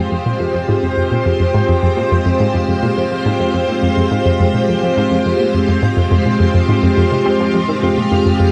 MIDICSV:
0, 0, Header, 1, 3, 480
1, 0, Start_track
1, 0, Key_signature, -4, "minor"
1, 0, Tempo, 571429
1, 816, Time_signature, 4, 2, 24, 8
1, 7155, End_track
2, 0, Start_track
2, 0, Title_t, "String machine"
2, 0, Program_c, 0, 50
2, 0, Note_on_c, 0, 56, 75
2, 0, Note_on_c, 0, 60, 73
2, 0, Note_on_c, 0, 65, 72
2, 0, Note_on_c, 0, 67, 73
2, 0, Note_on_c, 0, 72, 84
2, 6568, Note_off_c, 0, 72, 0
2, 6575, Note_on_c, 0, 77, 88
2, 7155, Note_off_c, 0, 56, 0
2, 7155, Note_off_c, 0, 60, 0
2, 7155, Note_off_c, 0, 65, 0
2, 7155, Note_off_c, 0, 67, 0
2, 7155, Note_off_c, 0, 77, 0
2, 7155, End_track
3, 0, Start_track
3, 0, Title_t, "Synth arpeggio sound"
3, 0, Program_c, 1, 84
3, 96, Note_on_c, 1, 41, 70
3, 131, Note_off_c, 1, 41, 0
3, 218, Note_on_c, 1, 46, 71
3, 275, Note_off_c, 1, 46, 0
3, 336, Note_on_c, 1, 41, 87
3, 371, Note_off_c, 1, 41, 0
3, 457, Note_on_c, 1, 41, 75
3, 491, Note_off_c, 1, 41, 0
3, 577, Note_on_c, 1, 44, 85
3, 611, Note_off_c, 1, 44, 0
3, 697, Note_on_c, 1, 41, 70
3, 731, Note_off_c, 1, 41, 0
3, 816, Note_on_c, 1, 41, 77
3, 851, Note_off_c, 1, 41, 0
3, 937, Note_on_c, 1, 46, 70
3, 995, Note_off_c, 1, 46, 0
3, 1057, Note_on_c, 1, 41, 67
3, 1091, Note_off_c, 1, 41, 0
3, 1176, Note_on_c, 1, 41, 70
3, 1211, Note_off_c, 1, 41, 0
3, 1297, Note_on_c, 1, 44, 101
3, 1331, Note_off_c, 1, 44, 0
3, 1417, Note_on_c, 1, 41, 75
3, 1452, Note_off_c, 1, 41, 0
3, 1537, Note_on_c, 1, 41, 75
3, 1571, Note_off_c, 1, 41, 0
3, 1655, Note_on_c, 1, 46, 76
3, 1714, Note_off_c, 1, 46, 0
3, 1777, Note_on_c, 1, 41, 77
3, 1811, Note_off_c, 1, 41, 0
3, 1897, Note_on_c, 1, 41, 72
3, 1931, Note_off_c, 1, 41, 0
3, 2017, Note_on_c, 1, 44, 96
3, 2051, Note_off_c, 1, 44, 0
3, 2136, Note_on_c, 1, 41, 71
3, 2171, Note_off_c, 1, 41, 0
3, 2256, Note_on_c, 1, 41, 86
3, 2291, Note_off_c, 1, 41, 0
3, 2376, Note_on_c, 1, 46, 78
3, 2434, Note_off_c, 1, 46, 0
3, 2496, Note_on_c, 1, 41, 67
3, 2531, Note_off_c, 1, 41, 0
3, 2618, Note_on_c, 1, 41, 74
3, 2652, Note_off_c, 1, 41, 0
3, 2735, Note_on_c, 1, 44, 97
3, 2770, Note_off_c, 1, 44, 0
3, 2854, Note_on_c, 1, 41, 72
3, 2890, Note_off_c, 1, 41, 0
3, 2974, Note_on_c, 1, 41, 72
3, 3010, Note_off_c, 1, 41, 0
3, 3095, Note_on_c, 1, 46, 74
3, 3154, Note_off_c, 1, 46, 0
3, 3216, Note_on_c, 1, 41, 78
3, 3251, Note_off_c, 1, 41, 0
3, 3336, Note_on_c, 1, 41, 74
3, 3371, Note_off_c, 1, 41, 0
3, 3455, Note_on_c, 1, 44, 92
3, 3490, Note_off_c, 1, 44, 0
3, 3576, Note_on_c, 1, 41, 75
3, 3611, Note_off_c, 1, 41, 0
3, 3696, Note_on_c, 1, 41, 81
3, 3731, Note_off_c, 1, 41, 0
3, 3815, Note_on_c, 1, 46, 71
3, 3874, Note_off_c, 1, 46, 0
3, 3937, Note_on_c, 1, 41, 74
3, 3971, Note_off_c, 1, 41, 0
3, 4058, Note_on_c, 1, 41, 69
3, 4092, Note_off_c, 1, 41, 0
3, 4177, Note_on_c, 1, 44, 101
3, 4212, Note_off_c, 1, 44, 0
3, 4297, Note_on_c, 1, 41, 73
3, 4331, Note_off_c, 1, 41, 0
3, 4417, Note_on_c, 1, 41, 66
3, 4451, Note_off_c, 1, 41, 0
3, 4535, Note_on_c, 1, 46, 70
3, 4594, Note_off_c, 1, 46, 0
3, 4656, Note_on_c, 1, 41, 74
3, 4691, Note_off_c, 1, 41, 0
3, 4775, Note_on_c, 1, 41, 74
3, 4811, Note_off_c, 1, 41, 0
3, 4893, Note_on_c, 1, 44, 95
3, 4930, Note_off_c, 1, 44, 0
3, 5014, Note_on_c, 1, 41, 69
3, 5050, Note_off_c, 1, 41, 0
3, 5135, Note_on_c, 1, 41, 81
3, 5170, Note_off_c, 1, 41, 0
3, 5255, Note_on_c, 1, 46, 73
3, 5314, Note_off_c, 1, 46, 0
3, 5375, Note_on_c, 1, 41, 71
3, 5411, Note_off_c, 1, 41, 0
3, 5497, Note_on_c, 1, 41, 76
3, 5531, Note_off_c, 1, 41, 0
3, 5617, Note_on_c, 1, 44, 91
3, 5652, Note_off_c, 1, 44, 0
3, 5738, Note_on_c, 1, 41, 73
3, 5772, Note_off_c, 1, 41, 0
3, 5857, Note_on_c, 1, 41, 73
3, 5915, Note_off_c, 1, 41, 0
3, 5977, Note_on_c, 1, 48, 71
3, 6064, Note_off_c, 1, 48, 0
3, 6097, Note_on_c, 1, 60, 82
3, 6131, Note_off_c, 1, 60, 0
3, 6216, Note_on_c, 1, 53, 71
3, 6274, Note_off_c, 1, 53, 0
3, 6337, Note_on_c, 1, 41, 86
3, 6395, Note_off_c, 1, 41, 0
3, 6455, Note_on_c, 1, 51, 71
3, 6514, Note_off_c, 1, 51, 0
3, 6577, Note_on_c, 1, 41, 76
3, 6612, Note_off_c, 1, 41, 0
3, 6698, Note_on_c, 1, 46, 73
3, 6755, Note_off_c, 1, 46, 0
3, 6817, Note_on_c, 1, 41, 69
3, 6852, Note_off_c, 1, 41, 0
3, 6937, Note_on_c, 1, 41, 73
3, 6971, Note_off_c, 1, 41, 0
3, 7055, Note_on_c, 1, 41, 83
3, 7143, Note_off_c, 1, 41, 0
3, 7155, End_track
0, 0, End_of_file